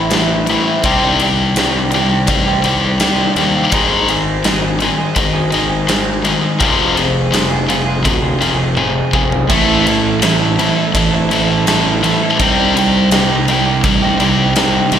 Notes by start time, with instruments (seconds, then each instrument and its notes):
Already playing: fingered electric bass A1, clean electric guitar E3 A3 C4 E4
0.11 clean electric guitar A2 E3 A3 C4 E4, distorted electric guitar A2 E3, snare, ride
0.47 distorted electric guitar A2 E3, clean electric guitar E3 A3 C4 E4, ride
0.66 clean electric guitar A3 C4 E4
0.83 fingered electric bass C2, clean electric guitar C3 D#3 G3 C4 G4, distorted electric guitar C3 G3 C4, kick, ride
1.20 distorted electric guitar C3 G3, clean electric guitar D#3 G3 C4 G4, ride
1.56 clean electric guitar C3 D#3 G3 C4 G4, distorted electric guitar C3 G3, snare, ride
1.73 clean electric guitar G3 C4 G4
1.91 distorted electric guitar C3 G3, clean electric guitar D#3 G3 C4 G4, ride
2.10 clean electric guitar G3 C4 G4
2.27 fingered electric bass A1, distorted electric guitar C3 G3, kick, ride
2.46 clean electric guitar G3 C4 G4
2.64 fingered electric bass C2, distorted electric guitar C3 G3, clean electric guitar D#3 G3 C4 G4, ride
2.82 clean electric guitar G3 C4 G4
2.99 clean electric guitar C3 D#3 G3 C4 G4, distorted electric guitar C3 G3, snare, ride
3.35 fingered electric bass D#2, distorted electric guitar C3 G3, clean electric guitar D#3 G3 C4 G4, ride
3.55 clean electric guitar G3 C4 G4
3.72 fingered electric bass G#1, distorted electric guitar G#2 D#3 G#3, clean electric guitar G#2 D#3 G#3 C4 D#4 G#4, kick, ride
4.08 distorted electric guitar G#2 D#3, clean electric guitar G#3 C4 D#4 G#4, ride
4.44 clean electric guitar G#2 D#3 G#3 C4 D#4 G#4, distorted electric guitar G#2 D#3, snare, ride
4.62 clean electric guitar G#3 C4 D#4 G#4
4.80 distorted electric guitar G#2 D#3, clean electric guitar G#3 C4 D#4 G#4, ride
4.98 clean electric guitar G#3 C4 D#4 G#4
5.16 fingered electric bass G#1, distorted electric guitar G#2 D#3, kick, ride
5.33 clean electric guitar G#3 C4 D#4 G#4
5.51 distorted electric guitar G#2 D#3, clean electric guitar G#3 C4 D#4 G#4, ride
5.70 clean electric guitar G#3 C4 D#4 G#4
5.88 clean electric guitar G#2 D#3 G#3 C4 D#4 G#4, distorted electric guitar G#2 D#3, snare, ride
6.24 distorted electric guitar G#2 D#3, clean electric guitar G#3 C4 D#4 G#4, ride
6.41 clean electric guitar G#3 C4 D#4 G#4
6.58 fingered electric bass F1, distorted electric guitar F2 C3 F3, clean electric guitar F3 C4 F4 G#4, kick, ride
6.94 distorted electric guitar F2 C3, clean electric guitar F3 C4 F4 G#4, ride
7.32 distorted electric guitar F2 C3, clean electric guitar F3 C4 F4 G#4, snare, ride
7.50 clean electric guitar C4 F4 G#4
7.67 distorted electric guitar F2 C3, clean electric guitar F3 C4 F4 G#4, ride
7.85 clean electric guitar C4 F4 G#4
8.04 fingered electric bass D2, distorted electric guitar F2 C3, kick, ride
8.22 clean electric guitar C4 F4 G#4
8.40 fingered electric bass F1, distorted electric guitar F2 C3, clean electric guitar F3 C4 F4 G#4, ride
8.56 clean electric guitar C4 F4 G#4
8.75 distorted electric guitar F2 C3, clean electric guitar F3 C4 F4 G#4, high tom
9.13 fingered electric bass F1, distorted electric guitar F2 C3, clean electric guitar F3 C4 F4 G#4, kick
9.29 clean electric guitar C4 F4 G#4, floor tom
9.48 fingered electric bass A1, clean electric guitar A2 E3 C4 E4 A4, distorted electric guitar A2 E3 A3, kick, crash, ride
9.85 distorted electric guitar A2 E3, clean electric guitar E3 C4 E4 A4, ride
10.21 clean electric guitar A2 E3 C4 E4 A4, distorted electric guitar A2 E3, snare, ride
10.38 clean electric guitar C4 E4 A4
10.57 distorted electric guitar A2 E3, clean electric guitar E3 C4 E4 A4, ride
10.75 clean electric guitar C4 E4 A4
10.94 fingered electric bass A1, distorted electric guitar A2 E3, kick, ride
11.12 clean electric guitar C4 E4 A4
11.30 distorted electric guitar A2 E3, clean electric guitar E3 C4 E4 A4, ride
11.49 clean electric guitar C4 E4 A4
11.66 clean electric guitar A2 E3 C4 E4 A4, distorted electric guitar A2 E3, snare, ride
12.02 distorted electric guitar A2 E3, clean electric guitar E3 C4 E4 A4, ride
12.22 clean electric guitar C4 E4 A4
12.39 fingered electric bass C2, clean electric guitar C3 G3 C4 D#4 G4, distorted electric guitar C3 G3 C4, kick, ride
12.75 distorted electric guitar C3 G3, clean electric guitar G3 C4 D#4 G4, ride
13.11 clean electric guitar C3 G3 C4 D#4 G4, distorted electric guitar C3 G3, snare, ride
13.30 clean electric guitar C4 D#4 G4
13.48 distorted electric guitar C3 G3, clean electric guitar G3 C4 D#4 G4, ride
13.66 clean electric guitar C4 D#4 G4
13.84 fingered electric bass A1, distorted electric guitar C3 G3, kick, ride
14.02 clean electric guitar C4 D#4 G4
14.19 fingered electric bass C2, distorted electric guitar C3 G3, clean electric guitar G3 C4 D#4 G4, ride
14.38 clean electric guitar C4 D#4 G4
14.56 clean electric guitar C3 G3 C4 D#4 G4, distorted electric guitar C3 G3, snare, ride
14.92 fingered electric bass A1, distorted electric guitar C3 G3, clean electric guitar G3 C4 D#4 G4, ride